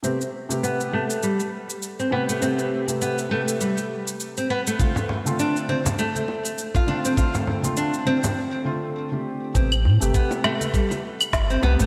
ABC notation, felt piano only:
X:1
M:4/4
L:1/16
Q:"Swing 16ths" 1/4=101
K:Am
V:1 name="Felt piano"
[C,A,B,G] z2 [C,A,GB]3 [C,A,B,G] z6 z [C,A,B,G]2 | [C,A,GB]3 [C,A,GB]3 [C,A,GB]8- [C,A,GB]2 | [D,A,CF] z2 [D,A,CF]3 [D,A,CF] z6 z [D,A,CF]2 | [D,A,CF]3 [D,A,CF]3 [D,A,CF]4 [D,A,CF]3 [D,A,CG]3 |
[C,A,B,G] z2 [C,A,GB]3 [C,A,B,] z6 z [C,A,B,G]2 |]